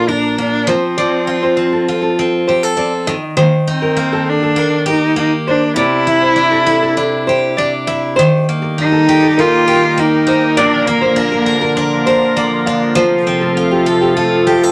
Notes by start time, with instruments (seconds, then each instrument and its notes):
Already playing: steel-string acoustic guitar A#2 F3 A#3 D4, cello F4
0.08 cello D4, nylon-string guitar A#4, steel-string acoustic guitar A#4
0.38 steel-string acoustic guitar A#3, cello D4
0.67 steel-string acoustic guitar F3, cello C4, nylon-string guitar C5
0.98 steel-string acoustic guitar F3, nylon-string guitar D5
1.27 steel-string acoustic guitar F4
1.43 nylon-string guitar C5
1.57 steel-string acoustic guitar C4
1.73 nylon-string guitar A4
1.88 steel-string acoustic guitar F4
2.02 nylon-string guitar A4
2.19 steel-string acoustic guitar C4
2.48 steel-string acoustic guitar G4, nylon-string guitar C5
2.63 steel-string acoustic guitar A4
2.77 steel-string acoustic guitar C4, nylon-string guitar D5
3.07 steel-string acoustic guitar D#3, nylon-string guitar D#5
3.37 steel-string acoustic guitar D#3, nylon-string guitar C5
3.41 cello A#3
3.67 cello C4, steel-string acoustic guitar D#4
3.82 nylon-string guitar A#4
3.97 steel-string acoustic guitar A#3
4.13 nylon-string guitar A4
4.29 cello D4
4.43 nylon-string guitar A4
4.56 steel-string acoustic guitar A#3, nylon-string guitar A#4
4.86 cello D#4, steel-string acoustic guitar G4, nylon-string guitar A#4
5.16 steel-string acoustic guitar A#3, cello D#4
5.48 cello D4, nylon-string guitar C5
5.76 steel-string acoustic guitar C3, cello E4, nylon-string guitar D5
6.07 steel-string acoustic guitar E4
6.22 nylon-string guitar C5
6.36 steel-string acoustic guitar D4
6.51 nylon-string guitar A4
6.66 steel-string acoustic guitar E4
6.82 nylon-string guitar A4
6.97 steel-string acoustic guitar D4
7.27 steel-string acoustic guitar G4, nylon-string guitar C5
7.57 steel-string acoustic guitar D4, nylon-string guitar D5
7.87 steel-string acoustic guitar E4, nylon-string guitar E5
8.16 analog synth pad D#3 G3 A#3 G4 A#4, steel-string acoustic guitar D#3, nylon-string guitar C5
8.49 steel-string acoustic guitar A#3
8.62 nylon-string guitar A#4
8.78 steel-string acoustic guitar D#4, cello D#4
8.92 nylon-string guitar A4
9.09 steel-string acoustic guitar G4
9.22 nylon-string guitar A4
9.38 steel-string acoustic guitar D#4, cello F4, nylon-string guitar A#4
9.67 steel-string acoustic guitar G4, nylon-string guitar A#4
9.98 steel-string acoustic guitar A#3, cello D#4
10.27 steel-string acoustic guitar D#4, nylon-string guitar C5
10.57 steel-string acoustic guitar A#2, analog synth pad D3 F3 F4, cello D4, nylon-string guitar D5
10.87 cello A#3, steel-string acoustic guitar A#3
11.01 nylon-string guitar C5
11.16 steel-string acoustic guitar D4
11.32 nylon-string guitar A#4
11.46 steel-string acoustic guitar A#4
11.61 nylon-string guitar A#4
11.77 steel-string acoustic guitar D4
12.06 steel-string acoustic guitar A#4, nylon-string guitar C5
12.36 steel-string acoustic guitar A#3, nylon-string guitar D5
12.66 steel-string acoustic guitar D4, nylon-string guitar F5
12.94 analog synth pad C3 A3 A4, steel-string acoustic guitar F3, nylon-string guitar C5
13.27 steel-string acoustic guitar C4
13.41 nylon-string guitar A4
13.57 steel-string acoustic guitar F4
13.71 nylon-string guitar G4
13.86 steel-string acoustic guitar A4
14.01 nylon-string guitar G4
14.17 steel-string acoustic guitar F4, nylon-string guitar A4
14.47 steel-string acoustic guitar G4, nylon-string guitar A4
14.63 steel-string acoustic guitar A4